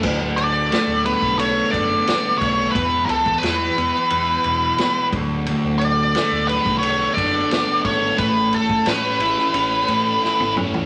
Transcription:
<<
  \new Staff \with { instrumentName = "Lead electric guitar" } { \time 4/4 \key d \lydian \tempo 4 = 88 r8 d''4 b'8 cis''8 d''4 cis''8 | b'8 a'8 b'2~ b'8 r8 | r8 d''4 b'8 cis''8 d''4 cis''8 | b'8 a'8 b'2~ b'8 r8 | }
  \new Staff \with { instrumentName = "Transistor combo organ" } { \time 4/4 \key d \lydian << { b'1~ | b'2.~ b'8 a'8~ | a'1 | gis''1 | } \\ { a'1 | e'2.~ e'8 d'8~ | d'1 | cis'1 | } >> }
  \new Staff \with { instrumentName = "Transistor combo organ" } { \time 4/4 \key d \lydian << { d'1 | b1~ | b1 | a1 | } \\ { fis1~ | fis1~ | fis1 | e1 | } >> }
  \new Staff \with { instrumentName = "Overdriven electric guitar" } { \time 4/4 \key d \lydian d,4 a8 b8 a8 d8 b8 a8 | e,4 e8 b8 e8 b,8 b8 d,8 | d,4 a8 b8 a8 d8 b8 a8 | a,4 cis'8 e'8 cis'8 a8 e'8 cis'8 | }
  \new Staff \with { instrumentName = "Picked electric bass" } { \clef bass \time 4/4 \key d \lydian d,,16 d,,4 d,,8 b,,8. fis,,8 r8 b,,8 | e,,8 cis,8 e,8 e,,16 r16 e,,8 e,,8 r8 d,,8~ | d,,16 d,,4 d,,8 b,,8. fis,,8 r8 gis,,8 | a,,8 gis,,8 a,8 a,,16 r16 a,,8 a,8 r16 gis,,16 fis,,16 e,,16 | }
  \new DrumStaff \with { instrumentName = "Drums" } \drummode { \time 4/4 <cymc bd>8 cymr8 <cymr sn>8 cymr16 bd16 cymr8 <bd cymr>8 <cymr sn>8 <bd cymr>8 | <bd cymr>8 cymr16 bd16 <cymr sn>8 cymr8 cymr8 cymr8 <cymr sn>8 <bd cymr>8 | cymr8 cymr8 <cymr sn>8 cymr16 bd16 cymr8 <bd cymr>8 <cymr sn>8 <bd cymr>8 | <bd cymr>8 cymr16 bd16 <cymr sn>8 cymr16 sn16 cymr8 cymr8 sn16 tommh16 toml16 tomfh16 | }
>>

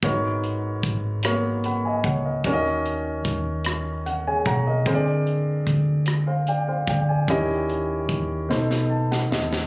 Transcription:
<<
  \new Staff \with { instrumentName = "Grand piano" } { \time 6/8 \key gis \minor \tempo 4. = 50 << { r2 <fis'' b''>16 <dis'' gis''>16 <cis'' fis''>16 <ais' dis''>16~ | <ais' dis''>16 r4. r16 fis''16 <gis' cis'' gis''>16 <cis'' fis'' ais''>16 <ais' dis''>16~ | <ais' dis''>16 r4. <bis' eis''>16 <d'' g''>16 <bis' eis''>16 <d'' g''>16 <d'' gis''>16~ | <d'' gis''>16 r4. r16 a''16 fis''16 dis''8 | } \\ { <b fis' ais' cis''>4 r8 <ais b fis' ais' cis''>4 r8 | <cis' fis' ais' d'' dis''>4 r2 | <bis gis' ais' bis' d''>4 r2 | <cis' e' g' dis''>4 r8 <b dis' a' c''>4 r8 | } >> }
  \new Staff \with { instrumentName = "Grand piano" } { \clef bass \time 6/8 \key gis \minor gis,4. r4. | dis4. r4. | d4. r4. | dis4. b,4. | }
  \new Staff \with { instrumentName = "Fingered electric bass" } { \clef bass \time 6/8 \key gis \minor gis,,4 gis,,4. cis,8 | dis,4 dis,4. b,,8 | d,4 d,4. d,8 | dis,4 dis,8 b,,4 dis,8 | }
  \new DrumStaff \with { instrumentName = "Drums" } \drummode { \time 6/8 <hh bd>8 hh8 <hh bd>8 <hh ss>8 hh8 <hh bd>8 | <hh bd>8 hh8 <hh bd ss>8 <hh ss>8 hh8 <hh bd>8 | <hh bd>8 hh8 <hh bd>8 <hh ss>8 hh8 <hh bd>8 | <hh bd>8 hh8 <hh bd>8 sn16 sn8 sn16 sn16 sn16 | }
>>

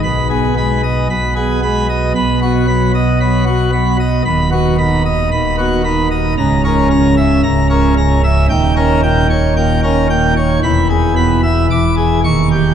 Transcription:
<<
  \new Staff \with { instrumentName = "Pipe organ" } { \time 4/4 \key b \major \tempo 4 = 113 b''8 gis'8 b''8 dis''8 b''8 gis'8 b''8 dis''8 | b''8 fis'8 b''8 dis''8 b''8 fis'8 b''8 dis''8 | b''8 fis'8 b''8 dis''8 b''8 fis'8 b''8 dis''8 | ais''8 ais'8 ais''8 e''8 ais''8 ais'8 ais''8 e''8 |
g''8 ais'8 g''8 cis''8 g''8 ais'8 g''8 cis''8 | b''8 gis'8 b''8 e''8 d'''8 gis'8 cis'''8 g'8 | }
  \new Staff \with { instrumentName = "Pipe organ" } { \clef bass \time 4/4 \key b \major << { b,8 b8 gis8 r8 b,8 b8 gis8 r8 | b,8 b8 fis8 r8 fis8 b8 fis8 r8 | dis,8 b8 dis8 r8 dis,8 b8 dis8 r8 | cis,8 cis'8 cis8 r8 cis,8 cis'8 cis8 r8 |
dis,8 cis'8 ais,8 r8 ais,8 cis'8 ais,8 r8 | e,4 b,8 r8 e,4 dis,4 | } \\ { b,,2 b,,2 | b,,1 | dis,,2 dis,,2 | cis,,2 cis,,2 |
dis,,1 | e,,2 e,,4 dis,,4 | } >> }
>>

